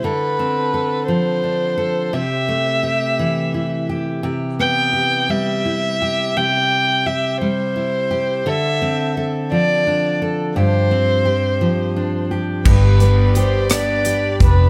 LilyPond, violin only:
\new Staff \with { instrumentName = "Violin" } { \time 6/8 \key c \major \tempo 4. = 57 b'4. c''4. | e''2~ e''8 r8 | r8 g''4 e''4. | g''4 e''8 c''4. |
e''4 r8 d''4 r8 | c''2~ c''8 r8 | b'4 c''8 d''4 b'8 | }